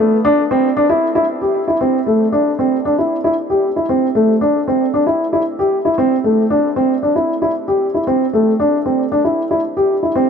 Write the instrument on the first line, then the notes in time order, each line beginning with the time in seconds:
upright piano
0.00 A3
0.25 D4
0.51 C4
0.77 D4
0.90 E4
1.15 E4
1.42 G4
1.68 E4
1.81 C4
2.06 A3
2.32 D4
2.59 C4
2.85 D4
2.98 E4
3.24 E4
3.50 G4
3.76 E4
3.89 C4
4.15 A3
4.41 D4
4.68 C4
4.94 D4
5.07 E4
5.33 E4
5.59 G4
5.85 E4
5.98 C4
6.24 A3
6.50 D4
6.76 C4
7.03 D4
7.16 E4
7.42 E4
7.68 G4
7.94 E4
8.07 C4
8.33 A3
8.60 D4
8.86 C4
9.12 D4
9.25 E4
9.51 E4
9.77 G4
10.03 E4
10.16 C4